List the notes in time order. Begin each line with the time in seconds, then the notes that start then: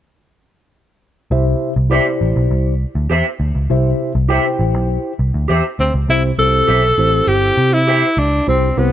1.31 C2 C3 E4 G4 C5 E5
1.76 C2
1.90 E4 G4 C5 D5 E5
2.21 A1
2.36 B1
2.51 C2
2.95 D2
3.10 E2 G4 C5 E5
3.40 D2
3.55 C#2
3.70 C2 C3 E4 G4 C5 E5
4.15 C2
4.29 E4 G4 C5 E5 G5
4.59 A1
4.74 B1
5.19 C2
5.34 D2
5.48 E2 G4 C5 E5
5.79 D2 C4
5.94 C#2
6.08 C2 C3 C4 E4 G4 C5
6.38 C2 C4 E4 G4 A4 C5
6.67 B1 G4 C5 E5
6.98 A1 C4 E4 G4 C5
7.27 G1 G4
7.57 C3
7.73 E4
7.87 G4 C5 E5
8.17 C#2 D4
8.47 C2 C3 C4 E4 G4 C5
8.77 C2 B3 C4 E4 G4 C5